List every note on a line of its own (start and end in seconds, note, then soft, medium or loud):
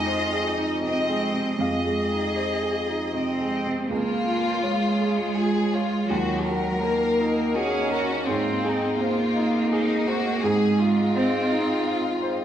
0.00 1.56 F2 medium
0.00 1.09 G#3 soft
0.00 0.23 D#4 soft
0.00 0.79 D#5 medium
0.00 0.79 G#5 medium
0.07 0.48 F4 soft
0.07 0.47 C5 soft
0.32 0.73 G#4 soft
0.47 0.84 D#4 soft
0.58 0.98 D#4 soft
0.83 1.24 C3 soft
0.83 1.62 C4 soft
0.83 1.58 D#5 soft
0.83 1.57 D#5 soft
1.09 1.50 G#3 soft
1.34 1.75 C3 soft
1.59 3.85 F2 soft
1.59 3.14 G#4 soft
1.59 3.65 D#5 soft
1.59 3.48 F5 soft
1.86 2.27 G#3 soft
2.12 2.53 D#4 soft
2.36 2.78 C5 soft
2.63 3.04 G#4 soft
2.89 3.30 D#4 soft
3.14 3.55 C3 soft
3.14 3.86 C4 medium
3.40 3.81 G#3 soft
3.66 3.91 C3 soft
3.88 6.06 C#2 soft
3.88 6.05 G#3 soft
3.88 4.64 A#3 medium
3.88 5.32 F4 medium
3.88 6.05 F4 soft
3.88 6.05 C#5 soft
4.28 4.86 F4 soft
4.63 6.09 G#3 medium
4.63 5.22 C#5 soft
5.01 5.59 G#3 soft
5.36 5.95 F4 soft
5.36 5.73 G#4 medium
5.73 6.09 F4 soft
5.73 6.10 C#5 soft
6.09 8.23 D#2 soft
6.09 6.84 F#3 medium
6.09 8.27 A#3 soft
6.09 10.43 D#4 soft
6.09 6.46 F#4 soft
6.09 10.43 D#5 soft
6.46 7.04 F#4 soft
6.46 7.54 A#4 soft
6.83 7.56 A#3 medium
6.83 7.40 A#4 soft
7.20 7.77 D#4 soft
7.55 8.27 C#4 medium
7.55 8.13 F#4 soft
7.55 7.91 G#4 medium
7.91 8.27 F#4 soft
7.91 8.27 A#4 soft
8.25 10.40 G#2 medium
8.25 8.98 C4 medium
8.25 12.45 C4 medium
8.25 8.63 F4 soft
8.63 9.00 D#4 soft
8.63 9.22 G#4 soft
8.98 10.45 A#3 medium
8.98 9.71 F4 soft
8.98 9.58 C5 soft
9.36 9.93 D#4 soft
9.69 10.05 D#4 medium
9.69 10.29 G#4 soft
10.07 10.43 F#4 medium
10.07 10.43 C5 soft
10.43 12.45 G#2 medium
10.43 11.15 G#3 medium
10.43 12.45 F4 medium
10.43 10.79 G#4 medium
10.43 12.45 D#5 medium
10.79 11.37 F4 soft
10.79 12.45 F4 medium
11.15 11.87 C4 medium
11.15 11.73 C5 soft
11.52 12.09 D#4 soft
11.87 12.45 F4 soft
12.22 12.45 C5 medium